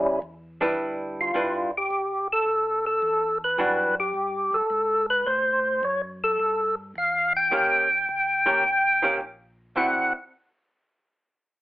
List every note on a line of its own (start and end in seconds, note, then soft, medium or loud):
0.00 0.21 C#2 medium
0.00 0.19 G3 medium
0.00 0.19 C#4 medium
0.00 0.20 E4 medium
0.22 0.77 E2 medium
0.61 1.31 G3 medium
0.61 1.31 D4 medium
0.61 1.31 E4 medium
0.61 1.31 B4 medium
0.78 1.33 D2 medium
1.21 1.71 F4 medium
1.34 1.89 G1 medium
1.34 1.69 G3 soft
1.34 1.70 D4 soft
1.34 1.70 E4 soft
1.34 1.70 B4 medium
1.77 2.28 G4 medium
1.91 2.45 A1 medium
2.33 2.85 A4 medium
2.46 3.01 B1 medium
2.86 3.38 A4 medium
3.02 3.57 E2 medium
3.44 3.95 B4 medium
3.58 4.13 F#2 medium
3.58 3.93 E3 medium
3.58 3.94 G3 medium
3.58 3.94 D4 medium
3.58 3.94 F#4 medium
4.00 4.57 G4 medium
4.14 4.51 G2 medium
4.53 4.62 G2 soft
4.53 5.06 A4 medium
4.70 5.25 G#2 medium
5.10 5.28 B4 medium
5.26 5.82 A2 medium
5.26 5.85 C5 loud
5.83 6.38 F#2 medium
5.83 6.02 C#5 medium
6.24 6.75 A4 medium
6.40 6.94 G2 medium
6.96 7.50 E2 medium
6.96 7.33 F5 medium
7.36 9.18 G5 loud
7.51 8.07 D#2 medium
7.51 7.87 D#3 soft
7.51 7.87 A#3 medium
7.51 7.87 C#4 medium
7.51 7.87 G4 medium
8.09 8.63 C#2 medium
8.46 8.62 D#3 medium
8.46 8.62 A#3 medium
8.46 8.62 C#4 medium
8.46 8.63 G4 medium
8.65 9.19 C2 medium
9.02 9.18 D#3 soft
9.02 9.19 A#3 medium
9.02 9.19 C#4 medium
9.02 9.19 G4 medium
9.21 9.75 A#1 medium
9.76 10.12 D2 medium
9.76 10.11 D3 medium
9.76 10.11 C4 medium
9.76 10.12 E4 medium
9.76 10.12 F#4 medium
9.76 10.13 F#5 medium